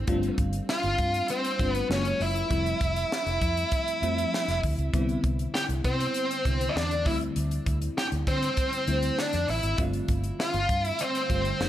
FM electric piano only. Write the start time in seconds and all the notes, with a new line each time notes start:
Already playing: C4 D4
0.07 G3 A3 C4 D4 F4
1.59 G3 A3 C4 D4 F4
1.89 F#3 G#3 A#3 C#4 F4
2.50 F3 G3 A3 C4 E4
4.02 F3 G3 A3 C4 E4
4.93 D3 G3 B3 C4 E4
6.45 D3 G3 B3 C4 E4
7.05 D3 F#3 A3 C4 E4
7.12 G3
8.87 D3 G3 A3 C4 E4
9.78 D3 G3 A3 C4 F4
11.29 D3 G3 A3 C4 F4
11.60 C#3 F#3 G#3 A#3 D#4